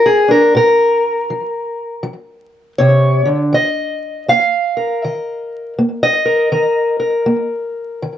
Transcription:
0.00 0.48 F3 medium
0.06 0.30 G#4 medium
0.28 0.52 D4 soft
0.28 0.55 A#4 medium
0.55 1.24 A#2 medium
0.55 2.05 A#4 medium
1.30 1.99 F3 medium
2.03 2.72 F3 medium
2.78 3.25 C3 medium
2.78 3.28 C#5 medium
3.25 3.53 D3 medium
3.53 4.22 D#3 medium
3.53 4.28 D#5 medium
4.28 4.97 A#3 medium
4.28 5.04 F5 medium
4.77 6.25 A#4 soft
5.04 5.73 D#3 medium
5.04 6.02 D#5 medium
5.79 6.47 A#3 medium
6.03 7.53 D#5 loud
6.25 6.52 A#4 medium
6.52 7.22 D#3 medium
6.52 6.99 A#4 soft
7.00 8.18 A#4 soft
7.26 7.97 A#3 medium
8.02 8.18 D#3 medium

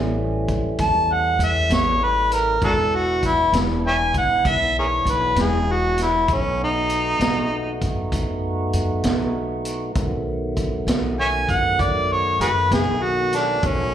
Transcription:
0.00 0.44 A1 medium
0.00 2.58 E3 medium
0.00 2.58 G3 medium
0.00 2.58 A3 medium
0.00 2.58 C#4 medium
0.48 0.77 E2 medium
0.48 kick medium
0.48 closed hi-hat soft
0.78 1.36 E2 medium
0.78 1.14 A5 loud
0.78 kick medium
0.78 closed hi-hat medium
1.13 1.41 F#5 medium
1.39 1.68 E2 medium
1.39 closed hi-hat medium
1.44 1.75 E5 medium
1.70 2.58 A1 medium
1.70 2.05 C#5 medium
1.70 snare medium
1.70 closed hi-hat medium
2.03 2.32 B4 medium
2.32 2.62 A#4 medium
2.32 closed hi-hat medium
2.62 3.50 E1 medium
2.62 6.25 E3 medium
2.62 6.25 B3 medium
2.62 6.25 D4 medium
2.62 2.73 D4 medium
2.62 6.25 E4 medium
2.62 2.72 F#4 medium
2.62 2.97 A4 medium
2.62 kick medium
2.62 closed hi-hat medium
2.95 3.24 F#4 medium
3.23 3.54 E4 medium
3.23 kick medium
3.23 closed hi-hat medium
3.53 4.10 E1 medium
3.53 snare loud
3.53 closed hi-hat medium
3.87 3.94 C#5 medium
3.87 3.96 E5 medium
3.87 4.15 G#5 medium
4.14 4.43 B1 medium
4.14 4.49 F#5 medium
4.14 kick medium
4.14 closed hi-hat medium
4.45 5.02 B1 medium
4.45 4.76 E5 medium
4.45 kick medium
4.45 closed hi-hat medium
4.79 4.85 G#4 medium
4.79 4.87 A#4 medium
4.79 5.12 C#5 medium
5.05 5.34 B1 medium
5.05 closed hi-hat soft
5.11 5.42 B4 medium
5.36 6.24 E1 medium
5.36 snare medium
5.36 closed hi-hat medium
5.40 5.73 G#4 medium
5.72 5.99 F#4 medium
5.98 snare soft
5.98 closed hi-hat medium
6.03 6.35 E4 medium
6.28 7.16 B1 medium
6.28 9.92 A3 medium
6.28 9.92 B3 medium
6.28 9.92 D#4 medium
6.28 9.92 F#4 medium
6.28 kick medium
6.28 closed hi-hat medium
6.33 6.61 C#4 medium
6.64 7.80 D#4 loud
6.89 closed hi-hat soft
7.19 7.77 B1 medium
7.19 snare loud
7.19 closed hi-hat medium
7.81 8.10 F#2 medium
7.81 kick medium
7.81 closed hi-hat medium
8.12 8.69 F#2 medium
8.12 kick medium
8.12 closed hi-hat medium
8.73 9.01 F#2 medium
8.73 closed hi-hat medium
9.04 9.92 B1 medium
9.04 snare medium
9.04 closed hi-hat medium
9.65 closed hi-hat medium
9.95 10.84 B1 medium
9.95 13.60 D#3 medium
9.95 13.60 F#3 medium
9.95 13.60 A3 medium
9.95 13.60 B3 medium
9.95 kick medium
9.95 closed hi-hat medium
10.57 kick medium
10.57 closed hi-hat medium
10.87 11.44 B1 medium
10.87 snare loud
10.87 closed hi-hat medium
11.20 11.28 C#5 medium
11.20 11.27 E5 medium
11.20 11.52 G#5 medium
11.49 11.77 F#2 medium
11.49 11.82 F#5 medium
11.49 kick medium
11.49 closed hi-hat medium
11.79 12.37 F#2 medium
11.79 12.13 D5 medium
11.79 kick medium
11.79 closed hi-hat medium
12.12 12.41 C#5 medium
12.40 12.68 F#2 medium
12.40 12.50 F#4 medium
12.40 12.48 G#4 medium
12.40 12.71 B4 medium
12.40 closed hi-hat medium
12.71 13.59 B1 medium
12.71 13.05 G#4 medium
12.71 snare medium
12.71 closed hi-hat medium
13.03 13.37 F#4 medium
13.33 13.68 D4 medium
13.33 snare soft
13.33 closed hi-hat medium
13.63 13.94 B1 medium
13.63 13.94 D#3 medium
13.63 13.94 F#3 medium
13.63 13.94 A3 medium
13.63 13.94 B3 medium
13.63 13.94 C#4 medium
13.63 kick loud
13.63 closed hi-hat medium

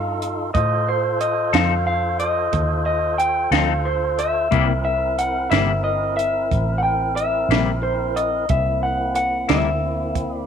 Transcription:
0.00 0.52 G2 medium
0.00 0.51 D#4 medium
0.00 0.51 F4 medium
0.00 0.51 A4 medium
0.00 0.51 F5 medium
0.22 closed hi-hat medium
0.54 1.51 A2 medium
0.54 4.48 F4 medium
0.54 4.49 A4 medium
0.54 4.48 C5 medium
0.54 0.88 D#5 medium
0.54 kick medium
0.54 closed hi-hat medium
0.88 1.19 C5 medium
1.21 1.54 D#5 medium
1.21 closed hi-hat medium
1.53 2.50 F2 medium
1.53 1.74 F3 soft
1.53 1.74 C4 soft
1.53 1.74 D#4 soft
1.53 1.73 A4 medium
1.53 1.86 F5 medium
1.53 snare medium
1.53 closed hi-hat medium
1.87 2.18 F5 medium
2.20 2.85 D#5 medium
2.20 closed hi-hat medium
2.53 3.49 D#2 medium
2.53 kick medium
2.53 closed hi-hat medium
2.86 3.18 D#5 medium
3.18 3.50 G5 medium
3.18 closed hi-hat medium
3.51 4.48 D2 medium
3.51 3.73 F3 soft
3.51 3.73 C4 medium
3.51 3.72 D#4 medium
3.51 3.72 A4 medium
3.51 3.87 F5 medium
3.51 snare medium
3.51 closed hi-hat medium
3.85 4.20 C5 medium
4.19 4.83 E5 medium
4.19 closed hi-hat medium
4.51 5.49 C2 medium
4.51 4.71 C3 medium
4.51 4.71 G3 medium
4.51 4.72 A#3 medium
4.51 8.46 C4 medium
4.51 4.72 E4 medium
4.51 8.46 E4 medium
4.51 8.46 A#4 medium
4.51 kick loud
4.51 closed hi-hat medium
4.85 5.16 E5 medium
5.19 5.50 F#5 medium
5.19 closed hi-hat medium
5.51 6.48 G1 medium
5.51 5.72 C3 soft
5.51 5.72 G3 soft
5.51 5.72 A#3 medium
5.51 5.71 E4 medium
5.51 5.83 E5 medium
5.51 snare medium
5.51 closed hi-hat medium
5.84 6.16 D#5 medium
6.17 6.78 E5 medium
6.17 closed hi-hat medium
6.51 7.48 A1 medium
6.51 kick medium
6.51 closed hi-hat medium
6.78 6.82 F#5 medium
6.83 7.16 G5 medium
7.16 7.79 E5 medium
7.16 closed hi-hat medium
7.49 8.46 A#1 medium
7.49 7.71 G3 medium
7.49 7.70 A#3 medium
7.49 7.70 E4 medium
7.49 snare medium
7.49 closed hi-hat medium
7.53 7.71 C3 soft
7.83 8.17 C5 medium
8.16 8.50 D#5 medium
8.16 closed hi-hat medium
8.49 9.46 C2 medium
8.49 10.46 A#3 medium
8.49 10.46 C4 medium
8.49 10.46 E4 medium
8.49 8.83 E5 medium
8.49 kick medium
8.49 closed hi-hat medium
8.83 9.15 F#5 medium
9.15 9.49 F#5 medium
9.15 closed hi-hat medium
9.49 10.45 D2 medium
9.49 9.69 C3 soft
9.49 9.69 G3 soft
9.49 9.69 A#3 soft
9.49 9.68 E4 medium
9.49 10.36 E5 medium
9.49 snare medium
9.49 closed hi-hat medium
10.15 kick medium
10.15 closed hi-hat medium
10.36 10.46 D5 medium

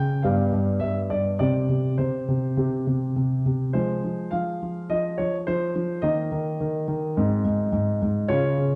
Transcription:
0.00 0.23 C#3 soft
0.00 0.20 C#4 soft
0.00 0.20 F4 soft
0.00 0.23 G5 medium
0.23 0.51 G2 medium
0.23 1.36 B3 soft
0.23 1.36 G4 soft
0.23 0.80 F5 medium
0.53 0.79 G2 soft
0.80 1.09 G2 soft
0.80 0.98 E5 medium
1.10 1.39 G2 soft
1.10 1.38 D5 medium
1.39 1.68 C3 soft
1.39 2.54 C4 soft
1.39 2.54 G4 soft
1.39 1.94 D5 medium
1.69 1.97 C3 soft
1.98 2.27 C3 soft
1.98 2.68 C5 soft
2.28 2.56 C3 soft
2.57 2.85 C3 soft
2.57 3.70 C4 soft
2.57 3.70 G4 soft
2.87 3.15 C3 soft
3.16 3.44 C3 soft
3.46 3.74 C3 soft
3.73 4.02 F3 soft
3.73 6.00 G#3 soft
3.73 6.00 G#4 soft
3.73 4.28 C5 medium
4.04 4.31 F3 soft
4.31 4.60 F3 soft
4.31 4.89 F5 medium
4.62 4.89 F3 soft
4.90 5.17 F3 soft
4.90 5.15 D#5 medium
5.18 5.46 F3 soft
5.18 5.35 C#5 medium
5.47 5.74 F3 medium
5.47 6.04 C5 medium
5.75 6.03 F3 soft
6.02 6.30 D#3 medium
6.02 7.13 A#3 soft
6.02 7.13 D#4 soft
6.02 7.97 D#5 medium
6.32 6.59 D#3 soft
6.60 6.86 D#3 medium
6.88 7.16 D#3 medium
7.17 7.43 G#2 medium
7.17 8.26 C4 soft
7.17 8.26 D#4 soft
7.45 7.71 G#2 medium
7.72 8.00 G#2 medium
8.02 8.29 G#2 medium
8.28 8.56 C#3 medium
8.28 8.75 C#4 soft
8.28 8.75 F4 soft
8.28 8.75 C#5 medium
8.58 8.75 C#3 soft

